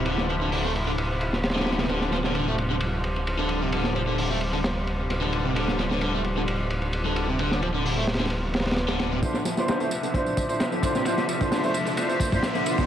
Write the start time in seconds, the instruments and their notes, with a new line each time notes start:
Already playing: detuned saw bass D1, string section C3 F3 E4
0.06 overdriven electric guitar D3, ride
0.18 snare
0.29 overdriven electric guitar F3, ride
0.41 overdriven electric guitar D3
0.52 overdriven electric guitar D3, open hi-hat
0.64 overdriven electric guitar A3
0.76 ride
0.87 overdriven electric guitar D3, ride
0.98 ride
1.21 ride
1.33 snare
1.43 snare, ride
1.50 snare, ride
1.56 overdriven electric guitar D3, snare, ride
1.60 snare, ride
1.66 snare, ride
1.72 snare, ride
1.78 overdriven electric guitar C3, snare, ride
1.84 snare, ride
1.89 detuned saw bass D1, overdriven electric guitar D3, string section G3, ride
2.01 snare
2.12 overdriven electric guitar F3, snare, ride
2.24 overdriven electric guitar D3, snare
2.35 overdriven electric guitar D3, ride
2.48 overdriven electric guitar A3
2.58 ride
2.71 overdriven electric guitar D3
2.80 ride
3.04 ride
3.16 ride
3.27 ride
3.39 overdriven electric guitar D3
3.49 ride
3.62 overdriven electric guitar C3
3.72 overdriven electric guitar D3, ride
3.84 snare
3.96 overdriven electric guitar F3, ride
4.07 overdriven electric guitar D3
4.18 overdriven electric guitar D3, open hi-hat
4.30 overdriven electric guitar A3
4.41 ride
4.53 overdriven electric guitar D3, ride
4.64 snare, ride
4.87 ride
5.10 ride
5.22 overdriven electric guitar D3, ride
5.33 ride
5.45 overdriven electric guitar C3
5.56 overdriven electric guitar D3, ride
5.68 snare
5.79 overdriven electric guitar F3, snare, ride
5.91 overdriven electric guitar D3, snare
6.01 overdriven electric guitar D3, ride
6.14 overdriven electric guitar A3
6.24 ride
6.37 overdriven electric guitar D3
6.48 ride
6.70 ride
6.82 ride
6.93 ride
7.05 overdriven electric guitar D3
7.16 ride
7.28 overdriven electric guitar C3
7.39 overdriven electric guitar D3, ride
7.51 snare
7.62 overdriven electric guitar F3, ride
7.74 overdriven electric guitar D3
7.85 overdriven electric guitar D3, open hi-hat
7.97 overdriven electric guitar A3
8.07 snare, ride
8.14 snare, ride
8.19 overdriven electric guitar D3, snare, ride
8.25 snare, ride
8.30 ride
8.54 snare, ride
8.60 snare, ride
8.65 snare, ride
8.71 snare, ride
8.76 snare, ride
8.88 overdriven electric guitar D3, snare, ride
8.99 snare, ride
9.11 overdriven electric guitar C3
9.22 string section C3 F3 D4 E5, overdriven electric guitar D3, brass ensemble D4 E4 F4 C5, kick, ride, tambourine, riser
9.34 snare, tambourine
9.45 overdriven electric guitar F3, snare, ride, tambourine
9.57 overdriven electric guitar D3, brass ensemble D4 E4 F4 C5, snare, tambourine
9.68 overdriven electric guitar D3, snare, ride, tambourine
9.80 overdriven electric guitar A3, brass ensemble D4 E4 F4 C5, tambourine
9.91 ride, tambourine
10.03 overdriven electric guitar D3, tambourine
10.14 brass ensemble D4 E4 F4 C5, kick, ride, tambourine
10.26 tambourine
10.37 kick, ride, tambourine
10.49 brass ensemble D4 E4 F4 C5, ride, tambourine
10.60 snare, ride, tambourine
10.72 overdriven electric guitar D3, tambourine
10.82 brass ensemble D4 E4 F4 C5, kick, ride, tambourine
10.95 overdriven electric guitar C3, snare, tambourine
11.05 overdriven electric guitar D3, brass ensemble D4 E4 F4 C5, ride, tambourine
11.18 snare, tambourine
11.28 overdriven electric guitar F3, ride, tambourine
11.40 overdriven electric guitar D3, brass ensemble D4 E4 F4 C5, kick, tambourine
11.51 overdriven electric guitar D3, snare, open hi-hat, tambourine
11.63 overdriven electric guitar A3, brass ensemble D4 E4 F4 C5, tambourine
11.74 ride, tambourine
11.85 overdriven electric guitar D3, ride, tambourine
11.97 brass ensemble D4 E4 F4 C5, ride, tambourine
12.09 tambourine
12.20 kick, ride, tambourine
12.32 brass ensemble D4 E4 F4 C5, kick, tambourine
12.43 snare, ride, tambourine
12.55 overdriven electric guitar D3, tambourine
12.66 brass ensemble D4 E4 F4 C5, ride, tambourine
12.78 overdriven electric guitar C3, kick, tambourine